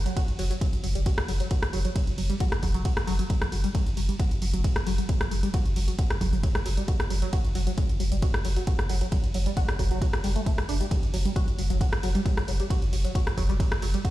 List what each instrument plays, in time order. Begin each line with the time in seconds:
0.06 synth arpeggio sound F#3, closed hi-hat
0.17 synth arpeggio sound F#4, kick, closed hi-hat, ride
0.28 sub bass F#1, closed hi-hat
0.39 sub bass F#1, synth arpeggio sound F#3, open hi-hat
0.51 synth arpeggio sound F#3, closed hi-hat
0.61 synth arpeggio sound F#3, kick, closed hi-hat, ride
0.73 sub bass F#1, closed hi-hat
0.84 sub bass F#1, synth arpeggio sound F#3, open hi-hat
0.95 sub bass F#1, synth arpeggio sound G3, closed hi-hat
1.06 synth arpeggio sound F#4, kick, closed hi-hat, ride
1.18 sub bass F#1, cross-stick, closed hi-hat
1.28 sub bass F#1, synth arpeggio sound F#3, open hi-hat
1.40 synth arpeggio sound F#3, closed hi-hat
1.51 synth arpeggio sound F#4, kick, closed hi-hat, ride
1.62 sub bass F#1, cross-stick, closed hi-hat
1.73 sub bass F#1, synth arpeggio sound F#3, open hi-hat
1.85 synth arpeggio sound F#3, closed hi-hat
1.95 synth arpeggio sound F#3, kick, closed hi-hat, ride
2.07 sub bass F#1, closed hi-hat
2.18 sub bass F#1, synth arpeggio sound F#3, open hi-hat
2.30 synth arpeggio sound G3, closed hi-hat
2.40 synth arpeggio sound F#4, kick, closed hi-hat, ride
2.52 sub bass F#1, cross-stick, closed hi-hat
2.63 sub bass F#1, synth arpeggio sound F#3, kick, open hi-hat
2.74 sub bass F#1, synth arpeggio sound F#3, closed hi-hat
2.85 synth arpeggio sound F#4, kick, closed hi-hat, ride
2.97 sub bass F#1, cross-stick, closed hi-hat
3.07 sub bass F#1, synth arpeggio sound F#3, open hi-hat
3.19 synth arpeggio sound F#3, closed hi-hat
3.30 synth arpeggio sound F#3, kick, closed hi-hat, ride
3.42 sub bass F#1, cross-stick, closed hi-hat
3.52 sub bass F#1, synth arpeggio sound F#3, open hi-hat
3.64 synth arpeggio sound G3, closed hi-hat
3.75 synth arpeggio sound F#3, kick, closed hi-hat, ride
3.86 sub bass F#1, closed hi-hat
3.97 sub bass F#1, synth arpeggio sound F#3, open hi-hat
4.09 synth arpeggio sound G3, closed hi-hat
4.19 synth arpeggio sound F#4, kick, closed hi-hat, ride
4.31 sub bass F#1, closed hi-hat
4.42 sub bass F#1, synth arpeggio sound F#3, open hi-hat
4.54 sub bass F#1, synth arpeggio sound F#3, closed hi-hat
4.64 synth arpeggio sound F#4, kick, closed hi-hat, ride
4.76 sub bass F#1, cross-stick, closed hi-hat
4.87 sub bass F#1, synth arpeggio sound F#3, open hi-hat
4.98 synth arpeggio sound F#3, closed hi-hat
5.09 synth arpeggio sound F#3, kick, closed hi-hat, ride
5.21 sub bass F#1, cross-stick, closed hi-hat
5.31 sub bass F#1, synth arpeggio sound F#3, open hi-hat
5.43 synth arpeggio sound G3, closed hi-hat
5.54 synth arpeggio sound F#4, kick, closed hi-hat, ride
5.66 sub bass F#1, closed hi-hat
5.76 sub bass F#1, synth arpeggio sound F#3, open hi-hat
5.88 synth arpeggio sound F#3, closed hi-hat
5.99 synth arpeggio sound F#4, kick, closed hi-hat, ride
6.10 sub bass F#1, cross-stick, closed hi-hat
6.21 sub bass F#1, synth arpeggio sound F#3, kick, open hi-hat
6.33 sub bass F#1, synth arpeggio sound F#3, closed hi-hat
6.43 synth arpeggio sound F#3, kick, closed hi-hat, ride
6.55 sub bass F#1, cross-stick, closed hi-hat
6.66 sub bass F#1, synth arpeggio sound F#3, open hi-hat
6.77 synth arpeggio sound G3, closed hi-hat
6.88 synth arpeggio sound F#4, kick, closed hi-hat, ride
7.00 sub bass F#1, cross-stick, closed hi-hat
7.10 sub bass F#1, synth arpeggio sound F#3, open hi-hat
7.22 synth arpeggio sound F#3, closed hi-hat
7.33 synth arpeggio sound F#4, kick, closed hi-hat, ride
7.45 sub bass F#1, closed hi-hat
7.55 sub bass F#1, synth arpeggio sound F#3, open hi-hat
7.67 synth arpeggio sound F#3, closed hi-hat
7.77 synth arpeggio sound F#3, kick, closed hi-hat, ride
7.89 sub bass F#1, closed hi-hat
8.00 sub bass F#1, synth arpeggio sound F#3, open hi-hat
8.12 sub bass F#1, synth arpeggio sound G3, closed hi-hat
8.22 synth arpeggio sound F#4, kick, closed hi-hat, ride
8.34 sub bass F#1, cross-stick, closed hi-hat
8.45 sub bass F#1, synth arpeggio sound F#3, open hi-hat
8.56 synth arpeggio sound F#3, closed hi-hat
8.67 synth arpeggio sound F#4, kick, closed hi-hat, ride
8.79 sub bass F#1, cross-stick, closed hi-hat
8.89 sub bass F#1, synth arpeggio sound F#3, open hi-hat
9.01 synth arpeggio sound F#3, closed hi-hat
9.12 synth arpeggio sound F#3, kick, closed hi-hat, ride
9.24 sub bass F#1, closed hi-hat
9.34 sub bass F#1, synth arpeggio sound F#3, open hi-hat
9.46 synth arpeggio sound G3, closed hi-hat
9.57 synth arpeggio sound F#4, kick, closed hi-hat, ride
9.68 sub bass F#1, cross-stick, closed hi-hat
9.79 sub bass F#1, synth arpeggio sound F#3, kick, open hi-hat
9.91 sub bass F#1, synth arpeggio sound F#3, closed hi-hat
10.02 synth arpeggio sound F#4, kick, closed hi-hat, ride
10.13 sub bass F#1, cross-stick, closed hi-hat
10.24 sub bass F#1, synth arpeggio sound G3, open hi-hat
10.36 synth arpeggio sound A3, closed hi-hat
10.46 synth arpeggio sound A3, kick, closed hi-hat, ride
10.58 sub bass F#1, cross-stick, closed hi-hat
10.69 sub bass F#1, synth arpeggio sound D4, open hi-hat
10.81 synth arpeggio sound G3, closed hi-hat
10.91 synth arpeggio sound F#3, kick, closed hi-hat, ride
11.03 sub bass F#1, closed hi-hat
11.13 sub bass F#1, synth arpeggio sound F#3, open hi-hat
11.25 synth arpeggio sound G3, closed hi-hat
11.36 synth arpeggio sound F#4, kick, closed hi-hat, ride
11.48 sub bass F#1, closed hi-hat
11.58 sub bass F#1, synth arpeggio sound F#3, open hi-hat
11.70 sub bass F#1, synth arpeggio sound F#3, closed hi-hat
11.81 synth arpeggio sound F#4, kick, closed hi-hat, ride
11.92 sub bass F#1, cross-stick, closed hi-hat
12.03 sub bass F#1, synth arpeggio sound F#3, open hi-hat
12.15 synth arpeggio sound G3, closed hi-hat
12.26 synth arpeggio sound F#3, kick, closed hi-hat, ride
12.37 sub bass F#1, cross-stick, closed hi-hat
12.48 sub bass F#1, synth arpeggio sound F#3, open hi-hat
12.60 synth arpeggio sound G3, closed hi-hat
12.70 synth arpeggio sound F#4, kick, closed hi-hat, ride
12.82 sub bass F#1, closed hi-hat
12.93 sub bass F#1, synth arpeggio sound F#3, open hi-hat
13.04 synth arpeggio sound F#3, closed hi-hat
13.15 synth arpeggio sound F#4, kick, closed hi-hat, ride
13.27 sub bass F#1, cross-stick, closed hi-hat
13.37 sub bass F#1, synth arpeggio sound F#3, kick, open hi-hat
13.49 sub bass F#1, synth arpeggio sound G3, closed hi-hat
13.60 synth arpeggio sound F#3, kick, closed hi-hat, ride
13.72 sub bass F#1, cross-stick, closed hi-hat
13.82 sub bass F#1, synth arpeggio sound F#3, open hi-hat
13.94 synth arpeggio sound G3, closed hi-hat
14.05 synth arpeggio sound F#4, kick, closed hi-hat, ride